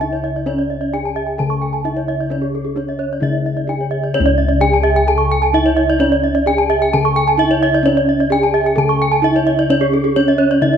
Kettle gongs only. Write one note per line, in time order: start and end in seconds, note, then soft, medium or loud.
0.00 0.88 C#3 medium
0.00 0.09 D4 soft
0.46 1.80 C#4 medium
0.93 1.01 D4 soft
1.40 2.74 C#3 medium
1.85 1.93 D4 soft
2.30 3.65 C#4 soft
2.76 2.84 D4 soft
3.22 4.57 C#3 medium
3.69 3.77 D4 soft
4.15 5.50 C#4 medium
4.20 6.91 C#2 loud
4.62 4.70 D4 soft
5.53 5.61 D4 soft
6.01 7.35 C#4 medium
6.48 6.55 D4 soft
6.94 8.28 C#3 medium
7.40 7.48 D4 soft
7.86 9.20 C#4 medium
8.33 8.41 D4 soft
8.78 10.12 C#3 medium
9.24 9.32 D4 soft
9.70 10.77 C#4 medium
10.17 10.25 D4 soft
10.62 10.77 C#3 medium